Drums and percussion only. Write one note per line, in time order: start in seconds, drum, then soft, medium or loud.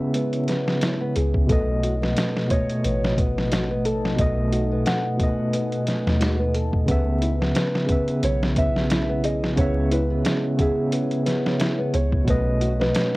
0.14 closed hi-hat medium
0.33 closed hi-hat soft
0.48 snare soft
0.48 closed hi-hat medium
0.68 snare medium
0.81 snare loud
0.81 closed hi-hat medium
1.16 closed hi-hat medium
1.34 kick medium
1.49 kick loud
1.49 closed hi-hat medium
1.83 closed hi-hat medium
2.03 snare medium
2.17 snare loud
2.17 closed hi-hat medium
2.37 snare medium
2.50 kick medium
2.50 closed hi-hat medium
2.69 closed hi-hat soft
2.84 closed hi-hat medium
3.04 snare medium
3.18 kick medium
3.18 closed hi-hat medium
3.38 snare soft
3.52 snare loud
3.52 closed hi-hat medium
3.85 closed hi-hat medium
4.05 snare medium
4.19 kick loud
4.19 closed hi-hat medium
4.53 closed hi-hat medium
4.86 snare loud
4.86 closed hi-hat medium
5.20 kick medium
5.20 closed hi-hat medium
5.53 closed hi-hat medium
5.72 closed hi-hat soft
5.87 snare soft
5.87 closed hi-hat medium
6.07 snare medium
6.21 snare loud
6.21 closed hi-hat medium
6.54 closed hi-hat medium
6.73 kick medium
6.88 kick loud
6.88 closed hi-hat medium
7.22 closed hi-hat medium
7.42 snare medium
7.55 snare loud
7.55 closed hi-hat medium
7.75 snare medium
7.89 kick medium
7.89 closed hi-hat medium
8.08 closed hi-hat soft
8.23 closed hi-hat medium
8.43 snare medium
8.56 kick medium
8.56 closed hi-hat medium
8.76 snare soft
8.90 snare loud
8.90 closed hi-hat medium
9.24 closed hi-hat medium
9.44 snare soft
9.57 kick loud
9.57 closed hi-hat medium
9.91 closed hi-hat medium
10.25 snare loud
10.25 closed hi-hat medium
10.59 kick medium
10.59 closed hi-hat medium
10.92 closed hi-hat medium
11.11 closed hi-hat soft
11.26 snare soft
11.26 closed hi-hat medium
11.46 snare medium
11.60 snare loud
11.60 closed hi-hat medium
11.94 closed hi-hat medium
12.12 kick medium
12.27 kick loud
12.27 closed hi-hat medium
12.61 closed hi-hat medium
12.81 snare medium
12.95 snare loud
12.95 closed hi-hat medium